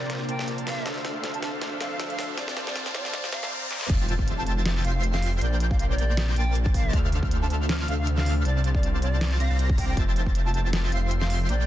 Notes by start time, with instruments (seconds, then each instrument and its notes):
Already playing: detuned saw bass A#1, ambient pad C3 A#3 D4, supersaw synth A#3 A#4 C5 D5 G5, flute D5, riser
0.10 snare, closed hi-hat
0.29 detuned saw bass A#1, supersaw synth A#3 A#4 C5 D5 A5, flute G5, closed hi-hat
0.39 snare
0.48 closed hi-hat
0.58 closed hi-hat
0.67 flute F5, snare, open hi-hat
0.85 detuned saw bass D2, ambient pad D3 F3 C4, supersaw synth D4 A4 C5 E5 F5, snare, closed hi-hat
1.05 snare, closed hi-hat
1.24 snare, closed hi-hat
1.34 flute A5, closed hi-hat
1.43 flute A5, snare, closed hi-hat
1.62 snare, closed hi-hat
1.80 detuned saw bass D2, supersaw synth D4 A4 C5 E5 F5, flute F5, snare, closed hi-hat
1.91 flute F5
2.00 snare, closed hi-hat
2.10 flute F5, closed hi-hat
2.19 snare, open hi-hat
2.37 detuned saw bass C2, ambient pad C3 G3 A#3 F4, supersaw synth C4 C5 D5 F5 A5, flute D5, snare, closed hi-hat
2.48 snare
2.57 snare, closed hi-hat
2.67 flute D5, snare
2.76 snare, closed hi-hat
2.86 snare, closed hi-hat
2.94 flute D5, snare, closed hi-hat
3.05 snare
3.14 snare, closed hi-hat
3.24 snare
3.32 detuned saw bass C2, supersaw synth C4 C5 D5 F5 A#5, flute F5, snare, closed hi-hat
3.43 detuned saw bass C2, supersaw synth C4 C5 D5 F5 A#5, snare
3.71 snare
3.81 snare
3.89 detuned saw bass F1, ambient pad C3 F3 E5, supersaw synth F4 C5 E5 G5 A5, digital synth lead A6, kick, closed hi-hat, crash, impact
4.09 closed hi-hat
4.19 kick
4.28 closed hi-hat
4.38 flute A5
4.46 flute A5, closed hi-hat
4.66 snare, closed hi-hat
4.84 detuned saw bass F1, supersaw synth F4 C5 E5 G5 C6, flute F5, digital synth lead C7, closed hi-hat
4.95 flute F5
5.04 closed hi-hat
5.14 flute F5, snare
5.22 open hi-hat
5.41 detuned saw bass A#1, supersaw synth A#3 A#4 C5 D5 G5, ambient pad A#3 D4, flute D5, digital synth lead G6, closed hi-hat
5.60 closed hi-hat
5.71 flute F5, kick
5.79 flute F5, closed hi-hat
5.89 flute D5
5.98 closed hi-hat
6.17 snare, closed hi-hat
6.36 detuned saw bass A#1, supersaw synth A#3 A#4 C5 D5 A5, flute G5, digital synth lead A6, closed hi-hat
6.55 closed hi-hat
6.66 kick
6.74 flute F5, kick, open hi-hat
6.93 detuned saw bass D2, ambient pad F3, supersaw synth D4 A4 C5 E5 F5, digital synth lead F6, kick, closed hi-hat
7.12 closed hi-hat
7.23 kick
7.31 closed hi-hat
7.42 flute A5
7.50 flute A5, closed hi-hat
7.69 snare, closed hi-hat
7.88 detuned saw bass D2, supersaw synth D4 A4 C5 E5 F5, flute F5, digital synth lead F6, closed hi-hat
7.99 flute F5
8.07 closed hi-hat
8.18 flute F5, snare
8.26 open hi-hat
8.45 detuned saw bass C2, ambient pad G3 A#3 F4, supersaw synth C4 C5 D5 F5 A5, flute D5, digital synth lead A6, closed hi-hat
8.64 closed hi-hat
8.74 flute D5, kick
8.83 closed hi-hat
9.02 flute D5, closed hi-hat
9.21 snare, closed hi-hat
9.40 detuned saw bass C2, supersaw synth C4 C5 D5 F5 A#5, flute F5, digital synth lead A#6, closed hi-hat
9.50 detuned saw bass C2, supersaw synth C4 C5 D5 F5 A#5, digital synth lead A#6
9.59 closed hi-hat
9.70 kick
9.78 flute G5, kick, open hi-hat
9.89 flute G5
9.97 detuned saw bass F1, ambient pad F3 E5, supersaw synth F4 C5 E5 G5 A5, digital synth lead A6, kick, closed hi-hat
10.16 closed hi-hat
10.27 kick
10.35 closed hi-hat
10.46 flute A5
10.54 flute A5, closed hi-hat
10.73 snare, closed hi-hat
10.92 detuned saw bass F1, supersaw synth F4 C5 E5 G5 C6, flute F5, digital synth lead C7, closed hi-hat
11.03 flute F5
11.11 closed hi-hat
11.21 flute F5, snare
11.30 open hi-hat
11.49 detuned saw bass A#1, ambient pad C3 A#3 D4, supersaw synth A#3 A#4 C5 D5 G5, flute D5, digital synth lead G6, closed hi-hat